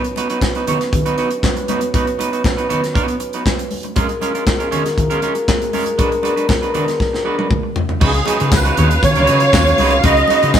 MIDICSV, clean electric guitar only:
0, 0, Header, 1, 3, 480
1, 0, Start_track
1, 0, Tempo, 506329
1, 1838, Time_signature, 4, 2, 24, 8
1, 10048, End_track
2, 0, Start_track
2, 0, Title_t, "Clean electric guitar"
2, 0, Program_c, 0, 27
2, 161, Note_on_c, 0, 59, 61
2, 162, Note_on_c, 0, 63, 55
2, 168, Note_on_c, 0, 66, 64
2, 170, Note_on_c, 0, 71, 70
2, 267, Note_off_c, 0, 59, 0
2, 268, Note_off_c, 0, 63, 0
2, 271, Note_off_c, 0, 66, 0
2, 272, Note_off_c, 0, 71, 0
2, 285, Note_on_c, 0, 71, 63
2, 286, Note_on_c, 0, 66, 56
2, 290, Note_on_c, 0, 63, 52
2, 295, Note_on_c, 0, 59, 45
2, 381, Note_off_c, 0, 66, 0
2, 381, Note_off_c, 0, 71, 0
2, 383, Note_off_c, 0, 63, 0
2, 386, Note_off_c, 0, 59, 0
2, 530, Note_on_c, 0, 71, 51
2, 532, Note_on_c, 0, 66, 51
2, 537, Note_on_c, 0, 63, 52
2, 540, Note_on_c, 0, 59, 43
2, 623, Note_off_c, 0, 71, 0
2, 624, Note_off_c, 0, 66, 0
2, 627, Note_off_c, 0, 63, 0
2, 628, Note_off_c, 0, 59, 0
2, 638, Note_on_c, 0, 59, 72
2, 639, Note_on_c, 0, 63, 83
2, 644, Note_on_c, 0, 66, 85
2, 648, Note_on_c, 0, 73, 82
2, 759, Note_off_c, 0, 66, 0
2, 762, Note_off_c, 0, 63, 0
2, 763, Note_off_c, 0, 73, 0
2, 775, Note_off_c, 0, 59, 0
2, 1001, Note_on_c, 0, 71, 72
2, 1003, Note_on_c, 0, 66, 70
2, 1007, Note_on_c, 0, 63, 66
2, 1010, Note_on_c, 0, 59, 64
2, 1105, Note_off_c, 0, 59, 0
2, 1107, Note_off_c, 0, 63, 0
2, 1113, Note_off_c, 0, 66, 0
2, 1114, Note_off_c, 0, 71, 0
2, 1116, Note_on_c, 0, 59, 64
2, 1118, Note_on_c, 0, 63, 70
2, 1125, Note_on_c, 0, 66, 71
2, 1125, Note_on_c, 0, 71, 72
2, 1225, Note_off_c, 0, 59, 0
2, 1226, Note_off_c, 0, 63, 0
2, 1229, Note_off_c, 0, 66, 0
2, 1230, Note_off_c, 0, 71, 0
2, 1598, Note_on_c, 0, 59, 72
2, 1603, Note_on_c, 0, 63, 76
2, 1605, Note_on_c, 0, 66, 79
2, 1605, Note_on_c, 0, 71, 73
2, 1721, Note_off_c, 0, 71, 0
2, 1725, Note_off_c, 0, 66, 0
2, 1726, Note_off_c, 0, 63, 0
2, 1735, Note_off_c, 0, 59, 0
2, 1838, Note_on_c, 0, 59, 68
2, 1843, Note_on_c, 0, 63, 73
2, 1843, Note_on_c, 0, 66, 78
2, 1850, Note_on_c, 0, 71, 81
2, 1956, Note_off_c, 0, 71, 0
2, 1963, Note_off_c, 0, 66, 0
2, 1964, Note_off_c, 0, 63, 0
2, 1975, Note_off_c, 0, 59, 0
2, 2072, Note_on_c, 0, 59, 54
2, 2075, Note_on_c, 0, 63, 60
2, 2080, Note_on_c, 0, 66, 63
2, 2083, Note_on_c, 0, 71, 67
2, 2184, Note_off_c, 0, 59, 0
2, 2185, Note_off_c, 0, 63, 0
2, 2188, Note_off_c, 0, 66, 0
2, 2189, Note_off_c, 0, 71, 0
2, 2201, Note_on_c, 0, 71, 58
2, 2207, Note_on_c, 0, 66, 53
2, 2208, Note_on_c, 0, 63, 50
2, 2211, Note_on_c, 0, 59, 42
2, 2299, Note_off_c, 0, 71, 0
2, 2302, Note_off_c, 0, 66, 0
2, 2303, Note_off_c, 0, 63, 0
2, 2304, Note_off_c, 0, 59, 0
2, 2439, Note_on_c, 0, 71, 61
2, 2447, Note_on_c, 0, 66, 53
2, 2448, Note_on_c, 0, 63, 51
2, 2450, Note_on_c, 0, 59, 45
2, 2538, Note_off_c, 0, 59, 0
2, 2538, Note_off_c, 0, 71, 0
2, 2542, Note_off_c, 0, 66, 0
2, 2543, Note_off_c, 0, 63, 0
2, 2550, Note_on_c, 0, 59, 75
2, 2555, Note_on_c, 0, 66, 96
2, 2556, Note_on_c, 0, 63, 81
2, 2559, Note_on_c, 0, 71, 85
2, 2674, Note_off_c, 0, 71, 0
2, 2676, Note_off_c, 0, 66, 0
2, 2679, Note_off_c, 0, 63, 0
2, 2691, Note_off_c, 0, 59, 0
2, 2790, Note_on_c, 0, 59, 79
2, 2795, Note_on_c, 0, 63, 79
2, 2796, Note_on_c, 0, 66, 77
2, 2801, Note_on_c, 0, 71, 91
2, 2911, Note_off_c, 0, 71, 0
2, 2915, Note_off_c, 0, 66, 0
2, 2920, Note_off_c, 0, 63, 0
2, 2988, Note_off_c, 0, 59, 0
2, 3167, Note_on_c, 0, 71, 55
2, 3171, Note_on_c, 0, 66, 52
2, 3174, Note_on_c, 0, 63, 47
2, 3177, Note_on_c, 0, 59, 44
2, 3263, Note_off_c, 0, 59, 0
2, 3263, Note_off_c, 0, 71, 0
2, 3265, Note_off_c, 0, 66, 0
2, 3266, Note_off_c, 0, 63, 0
2, 3751, Note_on_c, 0, 56, 70
2, 3755, Note_on_c, 0, 61, 64
2, 3755, Note_on_c, 0, 65, 78
2, 3760, Note_on_c, 0, 70, 80
2, 3866, Note_off_c, 0, 70, 0
2, 3872, Note_off_c, 0, 61, 0
2, 3872, Note_off_c, 0, 65, 0
2, 3892, Note_off_c, 0, 56, 0
2, 3992, Note_on_c, 0, 56, 68
2, 3998, Note_on_c, 0, 61, 67
2, 4000, Note_on_c, 0, 65, 69
2, 4005, Note_on_c, 0, 70, 68
2, 4104, Note_off_c, 0, 56, 0
2, 4107, Note_off_c, 0, 61, 0
2, 4107, Note_off_c, 0, 70, 0
2, 4108, Note_off_c, 0, 65, 0
2, 4118, Note_on_c, 0, 70, 52
2, 4122, Note_on_c, 0, 65, 54
2, 4126, Note_on_c, 0, 61, 47
2, 4129, Note_on_c, 0, 56, 43
2, 4218, Note_off_c, 0, 70, 0
2, 4221, Note_off_c, 0, 65, 0
2, 4223, Note_off_c, 0, 61, 0
2, 4224, Note_off_c, 0, 56, 0
2, 4353, Note_on_c, 0, 70, 54
2, 4359, Note_on_c, 0, 65, 55
2, 4361, Note_on_c, 0, 61, 45
2, 4364, Note_on_c, 0, 56, 45
2, 4454, Note_off_c, 0, 56, 0
2, 4456, Note_off_c, 0, 61, 0
2, 4456, Note_off_c, 0, 70, 0
2, 4459, Note_off_c, 0, 65, 0
2, 4465, Note_on_c, 0, 56, 75
2, 4468, Note_on_c, 0, 61, 87
2, 4474, Note_on_c, 0, 65, 85
2, 4476, Note_on_c, 0, 73, 91
2, 4591, Note_off_c, 0, 65, 0
2, 4593, Note_off_c, 0, 73, 0
2, 4594, Note_off_c, 0, 61, 0
2, 4610, Note_off_c, 0, 56, 0
2, 4834, Note_on_c, 0, 70, 76
2, 4840, Note_on_c, 0, 65, 79
2, 4842, Note_on_c, 0, 61, 73
2, 4846, Note_on_c, 0, 56, 71
2, 4936, Note_off_c, 0, 56, 0
2, 4942, Note_off_c, 0, 61, 0
2, 4945, Note_off_c, 0, 65, 0
2, 4948, Note_off_c, 0, 70, 0
2, 4948, Note_on_c, 0, 56, 71
2, 4953, Note_on_c, 0, 61, 75
2, 4957, Note_on_c, 0, 65, 71
2, 4960, Note_on_c, 0, 70, 82
2, 5062, Note_off_c, 0, 56, 0
2, 5065, Note_off_c, 0, 61, 0
2, 5065, Note_off_c, 0, 70, 0
2, 5067, Note_off_c, 0, 65, 0
2, 5435, Note_on_c, 0, 56, 76
2, 5438, Note_on_c, 0, 61, 80
2, 5442, Note_on_c, 0, 65, 92
2, 5444, Note_on_c, 0, 70, 82
2, 5547, Note_off_c, 0, 70, 0
2, 5555, Note_off_c, 0, 65, 0
2, 5557, Note_off_c, 0, 61, 0
2, 5575, Note_off_c, 0, 56, 0
2, 5667, Note_on_c, 0, 56, 85
2, 5672, Note_on_c, 0, 62, 77
2, 5675, Note_on_c, 0, 66, 78
2, 5679, Note_on_c, 0, 71, 79
2, 5788, Note_off_c, 0, 71, 0
2, 5794, Note_off_c, 0, 66, 0
2, 5796, Note_off_c, 0, 62, 0
2, 5811, Note_off_c, 0, 56, 0
2, 5904, Note_on_c, 0, 56, 67
2, 5907, Note_on_c, 0, 62, 76
2, 5910, Note_on_c, 0, 66, 71
2, 5913, Note_on_c, 0, 71, 70
2, 6020, Note_off_c, 0, 71, 0
2, 6021, Note_off_c, 0, 56, 0
2, 6022, Note_off_c, 0, 62, 0
2, 6024, Note_off_c, 0, 66, 0
2, 6031, Note_on_c, 0, 71, 61
2, 6035, Note_on_c, 0, 66, 53
2, 6037, Note_on_c, 0, 62, 58
2, 6041, Note_on_c, 0, 56, 42
2, 6135, Note_off_c, 0, 71, 0
2, 6137, Note_off_c, 0, 56, 0
2, 6138, Note_off_c, 0, 62, 0
2, 6138, Note_off_c, 0, 66, 0
2, 6275, Note_on_c, 0, 71, 59
2, 6279, Note_on_c, 0, 66, 49
2, 6281, Note_on_c, 0, 62, 44
2, 6286, Note_on_c, 0, 56, 44
2, 6376, Note_off_c, 0, 56, 0
2, 6377, Note_off_c, 0, 71, 0
2, 6379, Note_off_c, 0, 66, 0
2, 6380, Note_off_c, 0, 62, 0
2, 6387, Note_on_c, 0, 56, 75
2, 6391, Note_on_c, 0, 62, 95
2, 6397, Note_on_c, 0, 66, 93
2, 6398, Note_on_c, 0, 71, 90
2, 6506, Note_off_c, 0, 71, 0
2, 6510, Note_off_c, 0, 66, 0
2, 6515, Note_off_c, 0, 62, 0
2, 6531, Note_off_c, 0, 56, 0
2, 6870, Note_on_c, 0, 56, 75
2, 6872, Note_on_c, 0, 62, 70
2, 6878, Note_on_c, 0, 66, 86
2, 6880, Note_on_c, 0, 71, 85
2, 6985, Note_off_c, 0, 71, 0
2, 6989, Note_off_c, 0, 66, 0
2, 6994, Note_off_c, 0, 62, 0
2, 6997, Note_off_c, 0, 56, 0
2, 6997, Note_on_c, 0, 71, 61
2, 7000, Note_on_c, 0, 66, 59
2, 7005, Note_on_c, 0, 62, 51
2, 7008, Note_on_c, 0, 56, 50
2, 7095, Note_off_c, 0, 56, 0
2, 7098, Note_off_c, 0, 71, 0
2, 7100, Note_off_c, 0, 62, 0
2, 7100, Note_off_c, 0, 66, 0
2, 7588, Note_on_c, 0, 56, 85
2, 7593, Note_on_c, 0, 63, 88
2, 7594, Note_on_c, 0, 66, 96
2, 7599, Note_on_c, 0, 71, 81
2, 7707, Note_off_c, 0, 71, 0
2, 7712, Note_off_c, 0, 63, 0
2, 7712, Note_off_c, 0, 66, 0
2, 7731, Note_off_c, 0, 56, 0
2, 7829, Note_on_c, 0, 56, 73
2, 7836, Note_on_c, 0, 63, 74
2, 7839, Note_on_c, 0, 66, 81
2, 7843, Note_on_c, 0, 71, 74
2, 7943, Note_off_c, 0, 56, 0
2, 7946, Note_off_c, 0, 63, 0
2, 7947, Note_off_c, 0, 66, 0
2, 7949, Note_off_c, 0, 71, 0
2, 7961, Note_on_c, 0, 71, 68
2, 7964, Note_on_c, 0, 66, 60
2, 7967, Note_on_c, 0, 63, 57
2, 7973, Note_on_c, 0, 56, 49
2, 8059, Note_off_c, 0, 71, 0
2, 8061, Note_off_c, 0, 66, 0
2, 8063, Note_off_c, 0, 63, 0
2, 8065, Note_off_c, 0, 56, 0
2, 8201, Note_on_c, 0, 71, 66
2, 8203, Note_on_c, 0, 66, 66
2, 8206, Note_on_c, 0, 63, 60
2, 8210, Note_on_c, 0, 56, 54
2, 8299, Note_off_c, 0, 71, 0
2, 8301, Note_off_c, 0, 66, 0
2, 8302, Note_off_c, 0, 63, 0
2, 8304, Note_off_c, 0, 56, 0
2, 8319, Note_on_c, 0, 56, 85
2, 8322, Note_on_c, 0, 63, 94
2, 8327, Note_on_c, 0, 66, 92
2, 8327, Note_on_c, 0, 73, 99
2, 8444, Note_off_c, 0, 66, 0
2, 8448, Note_off_c, 0, 63, 0
2, 8449, Note_off_c, 0, 73, 0
2, 8456, Note_off_c, 0, 56, 0
2, 8685, Note_on_c, 0, 71, 85
2, 8694, Note_on_c, 0, 63, 72
2, 8694, Note_on_c, 0, 66, 85
2, 8698, Note_on_c, 0, 56, 80
2, 8792, Note_off_c, 0, 56, 0
2, 8797, Note_off_c, 0, 63, 0
2, 8798, Note_off_c, 0, 66, 0
2, 8799, Note_off_c, 0, 71, 0
2, 8804, Note_on_c, 0, 56, 71
2, 8808, Note_on_c, 0, 63, 69
2, 8810, Note_on_c, 0, 66, 73
2, 8810, Note_on_c, 0, 71, 81
2, 8909, Note_off_c, 0, 56, 0
2, 8911, Note_off_c, 0, 63, 0
2, 8912, Note_off_c, 0, 66, 0
2, 8912, Note_off_c, 0, 71, 0
2, 9286, Note_on_c, 0, 56, 93
2, 9291, Note_on_c, 0, 63, 87
2, 9296, Note_on_c, 0, 66, 91
2, 9296, Note_on_c, 0, 71, 98
2, 9406, Note_off_c, 0, 71, 0
2, 9411, Note_off_c, 0, 66, 0
2, 9415, Note_off_c, 0, 63, 0
2, 9418, Note_off_c, 0, 56, 0
2, 9518, Note_on_c, 0, 56, 86
2, 9522, Note_on_c, 0, 63, 87
2, 9525, Note_on_c, 0, 66, 93
2, 9527, Note_on_c, 0, 71, 101
2, 9634, Note_off_c, 0, 71, 0
2, 9639, Note_off_c, 0, 63, 0
2, 9639, Note_off_c, 0, 66, 0
2, 9654, Note_off_c, 0, 56, 0
2, 9762, Note_on_c, 0, 56, 71
2, 9766, Note_on_c, 0, 63, 79
2, 9769, Note_on_c, 0, 66, 82
2, 9769, Note_on_c, 0, 71, 74
2, 9867, Note_off_c, 0, 56, 0
2, 9869, Note_off_c, 0, 63, 0
2, 9870, Note_off_c, 0, 66, 0
2, 9871, Note_off_c, 0, 71, 0
2, 9881, Note_on_c, 0, 71, 70
2, 9885, Note_on_c, 0, 66, 62
2, 9887, Note_on_c, 0, 63, 56
2, 9891, Note_on_c, 0, 56, 54
2, 9978, Note_off_c, 0, 71, 0
2, 9980, Note_off_c, 0, 66, 0
2, 9981, Note_off_c, 0, 63, 0
2, 9982, Note_off_c, 0, 56, 0
2, 10048, End_track
3, 0, Start_track
3, 0, Title_t, "Muted clean electric guitar strokes"
3, 42, Note_on_c, 9, 29, 42
3, 137, Note_off_c, 9, 29, 0
3, 767, Note_on_c, 9, 29, 50
3, 862, Note_off_c, 9, 29, 0
3, 879, Note_on_c, 9, 29, 34
3, 974, Note_off_c, 9, 29, 0
3, 1245, Note_on_c, 9, 29, 46
3, 1340, Note_off_c, 9, 29, 0
3, 1482, Note_on_c, 9, 29, 49
3, 1577, Note_off_c, 9, 29, 0
3, 1733, Note_on_c, 9, 29, 50
3, 1827, Note_off_c, 9, 29, 0
3, 1968, Note_on_c, 9, 29, 33
3, 2063, Note_off_c, 9, 29, 0
3, 2686, Note_on_c, 9, 29, 50
3, 2780, Note_off_c, 9, 29, 0
3, 2922, Note_on_c, 9, 29, 44
3, 3017, Note_off_c, 9, 29, 0
3, 3034, Note_on_c, 9, 29, 51
3, 3128, Note_off_c, 9, 29, 0
3, 3274, Note_on_c, 9, 29, 43
3, 3369, Note_off_c, 9, 29, 0
3, 3404, Note_on_c, 9, 29, 46
3, 3499, Note_off_c, 9, 29, 0
3, 3643, Note_on_c, 9, 29, 43
3, 3737, Note_off_c, 9, 29, 0
3, 3878, Note_on_c, 9, 29, 48
3, 3973, Note_off_c, 9, 29, 0
3, 4235, Note_on_c, 9, 29, 41
3, 4330, Note_off_c, 9, 29, 0
3, 4597, Note_on_c, 9, 29, 47
3, 4692, Note_off_c, 9, 29, 0
3, 4707, Note_on_c, 9, 29, 39
3, 4802, Note_off_c, 9, 29, 0
3, 5076, Note_on_c, 9, 29, 43
3, 5171, Note_off_c, 9, 29, 0
3, 5319, Note_on_c, 9, 29, 45
3, 5414, Note_off_c, 9, 29, 0
3, 5559, Note_on_c, 9, 29, 45
3, 5653, Note_off_c, 9, 29, 0
3, 5800, Note_on_c, 9, 29, 41
3, 5894, Note_off_c, 9, 29, 0
3, 6518, Note_on_c, 9, 29, 42
3, 6613, Note_off_c, 9, 29, 0
3, 6631, Note_on_c, 9, 29, 33
3, 6726, Note_off_c, 9, 29, 0
3, 6761, Note_on_c, 9, 29, 48
3, 6856, Note_off_c, 9, 29, 0
3, 7106, Note_on_c, 9, 29, 36
3, 7201, Note_off_c, 9, 29, 0
3, 7236, Note_on_c, 9, 29, 39
3, 7331, Note_off_c, 9, 29, 0
3, 7479, Note_on_c, 9, 29, 40
3, 7574, Note_off_c, 9, 29, 0
3, 7719, Note_on_c, 9, 29, 35
3, 7813, Note_off_c, 9, 29, 0
3, 8077, Note_on_c, 9, 29, 42
3, 8172, Note_off_c, 9, 29, 0
3, 8453, Note_on_c, 9, 29, 46
3, 8548, Note_off_c, 9, 29, 0
3, 8558, Note_on_c, 9, 29, 42
3, 8653, Note_off_c, 9, 29, 0
3, 8933, Note_on_c, 9, 29, 46
3, 9028, Note_off_c, 9, 29, 0
3, 9172, Note_on_c, 9, 29, 42
3, 9267, Note_off_c, 9, 29, 0
3, 9417, Note_on_c, 9, 29, 38
3, 9512, Note_off_c, 9, 29, 0
3, 9645, Note_on_c, 9, 29, 52
3, 9740, Note_off_c, 9, 29, 0
3, 10048, End_track
0, 0, End_of_file